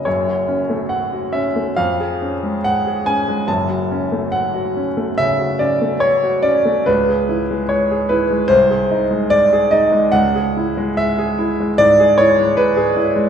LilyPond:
\new Staff \with { instrumentName = "Grand piano" } { \time 4/4 \key fis \minor \tempo 4 = 71 << { cis''4 fis''8 e''8 eis''4 fis''8 gis''8 | a''4 fis''4 e''8 d''8 cis''8 d''8 | b'4 cis''8 b'8 bis'4 d''8 dis''8 | fis''4 e''4 d''8 cis''8 b'8 r8 | } \\ { <fis,, fis,>16 fis'16 cis'16 a8 fis'16 cis'16 a16 eis,16 gis'16 cis'16 gis8 gis'16 cis'16 gis16 | <fis,, fis,>16 fis'16 cis'16 a8 fis'16 cis'16 a16 cis16 fis'16 cis'16 a8 fis'16 cis'16 a16 | cis,16 gis'16 e'16 gis8 gis'16 e'16 gis16 bis,,16 gis'16 dis'16 gis8 gis'16 dis'16 gis16 | cis,16 gis'16 e'16 gis8 gis'16 e'16 gis16 gis,16 gis'16 e'16 gis8 gis'16 e'16 gis16 | } >> }